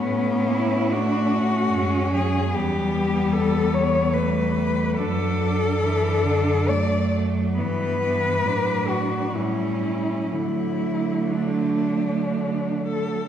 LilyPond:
<<
  \new Staff \with { instrumentName = "Cello" } { \time 3/4 \key fis \minor \tempo 4 = 69 cis'4 fis'4. gis'8 | \key d \major g'4 a'8 cis''8 b'4 | a'2 d''8 r8 | b'4. fis'8 e'4 |
e'4 d'4. a'8 | }
  \new Staff \with { instrumentName = "Cello" } { \time 3/4 \key fis \minor a8 e'8 d'8 cis'4. | \key d \major b2 a4 | d'4 d'4 a4 | b4 d'4 cis'4 |
a2~ a8. r16 | }
  \new Staff \with { instrumentName = "Cello" } { \clef bass \time 3/4 \key fis \minor b4 a4 gis8 fis8 | \key d \major g2 g4 | fis4 e8 d8 fis8 fis8 | e8 e8 fis4 g4 |
fis2~ fis8. r16 | }
  \new Staff \with { instrumentName = "Cello" } { \clef bass \time 3/4 \key fis \minor a,2 fis,4 | \key d \major e,2. | fis,2. | g,4 a,4 a,4 |
d2~ d8. r16 | }
>>